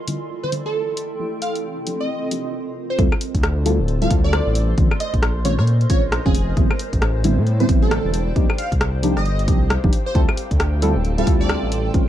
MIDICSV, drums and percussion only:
0, 0, Header, 1, 2, 480
1, 0, Start_track
1, 0, Tempo, 447761
1, 1281, Time_signature, 4, 2, 24, 8
1, 12954, End_track
2, 0, Start_track
2, 0, Title_t, "Drums"
2, 81, Note_on_c, 9, 46, 112
2, 188, Note_off_c, 9, 46, 0
2, 561, Note_on_c, 9, 46, 105
2, 668, Note_off_c, 9, 46, 0
2, 1041, Note_on_c, 9, 46, 104
2, 1148, Note_off_c, 9, 46, 0
2, 1521, Note_on_c, 9, 46, 104
2, 1628, Note_off_c, 9, 46, 0
2, 1667, Note_on_c, 9, 46, 64
2, 1774, Note_off_c, 9, 46, 0
2, 2001, Note_on_c, 9, 46, 106
2, 2108, Note_off_c, 9, 46, 0
2, 2481, Note_on_c, 9, 46, 110
2, 2588, Note_off_c, 9, 46, 0
2, 3201, Note_on_c, 9, 36, 116
2, 3201, Note_on_c, 9, 42, 66
2, 3308, Note_off_c, 9, 36, 0
2, 3308, Note_off_c, 9, 42, 0
2, 3347, Note_on_c, 9, 37, 71
2, 3347, Note_on_c, 9, 75, 60
2, 3441, Note_on_c, 9, 46, 115
2, 3454, Note_off_c, 9, 37, 0
2, 3454, Note_off_c, 9, 75, 0
2, 3548, Note_off_c, 9, 46, 0
2, 3586, Note_on_c, 9, 36, 63
2, 3587, Note_on_c, 9, 42, 64
2, 3681, Note_off_c, 9, 42, 0
2, 3681, Note_on_c, 9, 37, 119
2, 3681, Note_on_c, 9, 42, 69
2, 3694, Note_off_c, 9, 36, 0
2, 3788, Note_off_c, 9, 37, 0
2, 3788, Note_off_c, 9, 42, 0
2, 3921, Note_on_c, 9, 46, 109
2, 4028, Note_off_c, 9, 46, 0
2, 4160, Note_on_c, 9, 42, 63
2, 4268, Note_off_c, 9, 42, 0
2, 4307, Note_on_c, 9, 42, 65
2, 4400, Note_on_c, 9, 36, 109
2, 4401, Note_on_c, 9, 46, 113
2, 4414, Note_off_c, 9, 42, 0
2, 4508, Note_off_c, 9, 36, 0
2, 4508, Note_off_c, 9, 46, 0
2, 4641, Note_on_c, 9, 37, 125
2, 4641, Note_on_c, 9, 42, 69
2, 4748, Note_off_c, 9, 37, 0
2, 4748, Note_off_c, 9, 42, 0
2, 4881, Note_on_c, 9, 46, 110
2, 4988, Note_off_c, 9, 46, 0
2, 5121, Note_on_c, 9, 36, 116
2, 5121, Note_on_c, 9, 42, 66
2, 5228, Note_off_c, 9, 36, 0
2, 5228, Note_off_c, 9, 42, 0
2, 5267, Note_on_c, 9, 37, 74
2, 5267, Note_on_c, 9, 75, 59
2, 5362, Note_on_c, 9, 46, 105
2, 5375, Note_off_c, 9, 37, 0
2, 5375, Note_off_c, 9, 75, 0
2, 5469, Note_off_c, 9, 46, 0
2, 5507, Note_on_c, 9, 36, 65
2, 5508, Note_on_c, 9, 42, 63
2, 5602, Note_off_c, 9, 42, 0
2, 5602, Note_on_c, 9, 37, 126
2, 5602, Note_on_c, 9, 42, 64
2, 5614, Note_off_c, 9, 36, 0
2, 5709, Note_off_c, 9, 37, 0
2, 5709, Note_off_c, 9, 42, 0
2, 5842, Note_on_c, 9, 46, 110
2, 5949, Note_off_c, 9, 46, 0
2, 5988, Note_on_c, 9, 37, 57
2, 6082, Note_on_c, 9, 42, 63
2, 6095, Note_off_c, 9, 37, 0
2, 6190, Note_off_c, 9, 42, 0
2, 6228, Note_on_c, 9, 42, 67
2, 6321, Note_on_c, 9, 36, 110
2, 6321, Note_on_c, 9, 46, 109
2, 6335, Note_off_c, 9, 42, 0
2, 6429, Note_off_c, 9, 36, 0
2, 6429, Note_off_c, 9, 46, 0
2, 6562, Note_on_c, 9, 37, 127
2, 6562, Note_on_c, 9, 42, 68
2, 6669, Note_off_c, 9, 37, 0
2, 6669, Note_off_c, 9, 42, 0
2, 6708, Note_on_c, 9, 36, 110
2, 6802, Note_on_c, 9, 46, 107
2, 6815, Note_off_c, 9, 36, 0
2, 6910, Note_off_c, 9, 46, 0
2, 7042, Note_on_c, 9, 36, 122
2, 7043, Note_on_c, 9, 42, 65
2, 7149, Note_off_c, 9, 36, 0
2, 7150, Note_off_c, 9, 42, 0
2, 7189, Note_on_c, 9, 37, 73
2, 7189, Note_on_c, 9, 75, 62
2, 7283, Note_on_c, 9, 46, 106
2, 7296, Note_off_c, 9, 37, 0
2, 7296, Note_off_c, 9, 75, 0
2, 7390, Note_off_c, 9, 46, 0
2, 7428, Note_on_c, 9, 36, 68
2, 7429, Note_on_c, 9, 42, 63
2, 7523, Note_off_c, 9, 42, 0
2, 7523, Note_on_c, 9, 37, 127
2, 7523, Note_on_c, 9, 42, 65
2, 7535, Note_off_c, 9, 36, 0
2, 7631, Note_off_c, 9, 37, 0
2, 7631, Note_off_c, 9, 42, 0
2, 7763, Note_on_c, 9, 46, 109
2, 7871, Note_off_c, 9, 46, 0
2, 8003, Note_on_c, 9, 42, 62
2, 8111, Note_off_c, 9, 42, 0
2, 8149, Note_on_c, 9, 42, 65
2, 8242, Note_on_c, 9, 36, 123
2, 8243, Note_on_c, 9, 46, 107
2, 8257, Note_off_c, 9, 42, 0
2, 8349, Note_off_c, 9, 36, 0
2, 8350, Note_off_c, 9, 46, 0
2, 8482, Note_on_c, 9, 37, 124
2, 8482, Note_on_c, 9, 42, 66
2, 8590, Note_off_c, 9, 37, 0
2, 8590, Note_off_c, 9, 42, 0
2, 8723, Note_on_c, 9, 46, 106
2, 8830, Note_off_c, 9, 46, 0
2, 8961, Note_on_c, 9, 36, 117
2, 8962, Note_on_c, 9, 42, 65
2, 9069, Note_off_c, 9, 36, 0
2, 9070, Note_off_c, 9, 42, 0
2, 9109, Note_on_c, 9, 37, 67
2, 9109, Note_on_c, 9, 75, 63
2, 9202, Note_on_c, 9, 46, 98
2, 9216, Note_off_c, 9, 37, 0
2, 9216, Note_off_c, 9, 75, 0
2, 9309, Note_off_c, 9, 46, 0
2, 9347, Note_on_c, 9, 36, 70
2, 9348, Note_on_c, 9, 42, 65
2, 9442, Note_off_c, 9, 42, 0
2, 9442, Note_on_c, 9, 37, 127
2, 9442, Note_on_c, 9, 42, 66
2, 9455, Note_off_c, 9, 36, 0
2, 9549, Note_off_c, 9, 37, 0
2, 9549, Note_off_c, 9, 42, 0
2, 9682, Note_on_c, 9, 46, 99
2, 9789, Note_off_c, 9, 46, 0
2, 9828, Note_on_c, 9, 37, 55
2, 9923, Note_on_c, 9, 42, 62
2, 9936, Note_off_c, 9, 37, 0
2, 10030, Note_off_c, 9, 42, 0
2, 10068, Note_on_c, 9, 42, 65
2, 10161, Note_on_c, 9, 36, 116
2, 10162, Note_on_c, 9, 46, 97
2, 10175, Note_off_c, 9, 42, 0
2, 10268, Note_off_c, 9, 36, 0
2, 10269, Note_off_c, 9, 46, 0
2, 10401, Note_on_c, 9, 37, 126
2, 10401, Note_on_c, 9, 42, 64
2, 10509, Note_off_c, 9, 37, 0
2, 10509, Note_off_c, 9, 42, 0
2, 10547, Note_on_c, 9, 36, 118
2, 10642, Note_on_c, 9, 46, 104
2, 10654, Note_off_c, 9, 36, 0
2, 10749, Note_off_c, 9, 46, 0
2, 10881, Note_on_c, 9, 36, 120
2, 10881, Note_on_c, 9, 42, 70
2, 10988, Note_off_c, 9, 36, 0
2, 10989, Note_off_c, 9, 42, 0
2, 11027, Note_on_c, 9, 37, 69
2, 11027, Note_on_c, 9, 75, 66
2, 11121, Note_on_c, 9, 46, 99
2, 11134, Note_off_c, 9, 37, 0
2, 11134, Note_off_c, 9, 75, 0
2, 11229, Note_off_c, 9, 46, 0
2, 11267, Note_on_c, 9, 36, 66
2, 11268, Note_on_c, 9, 42, 65
2, 11362, Note_off_c, 9, 42, 0
2, 11362, Note_on_c, 9, 37, 127
2, 11362, Note_on_c, 9, 42, 70
2, 11374, Note_off_c, 9, 36, 0
2, 11469, Note_off_c, 9, 37, 0
2, 11469, Note_off_c, 9, 42, 0
2, 11602, Note_on_c, 9, 46, 100
2, 11709, Note_off_c, 9, 46, 0
2, 11842, Note_on_c, 9, 42, 68
2, 11949, Note_off_c, 9, 42, 0
2, 11988, Note_on_c, 9, 42, 67
2, 12081, Note_on_c, 9, 36, 113
2, 12082, Note_on_c, 9, 46, 98
2, 12096, Note_off_c, 9, 42, 0
2, 12188, Note_off_c, 9, 36, 0
2, 12189, Note_off_c, 9, 46, 0
2, 12322, Note_on_c, 9, 37, 125
2, 12322, Note_on_c, 9, 42, 71
2, 12429, Note_off_c, 9, 37, 0
2, 12429, Note_off_c, 9, 42, 0
2, 12562, Note_on_c, 9, 46, 105
2, 12669, Note_off_c, 9, 46, 0
2, 12801, Note_on_c, 9, 36, 117
2, 12801, Note_on_c, 9, 42, 73
2, 12908, Note_off_c, 9, 36, 0
2, 12908, Note_off_c, 9, 42, 0
2, 12954, End_track
0, 0, End_of_file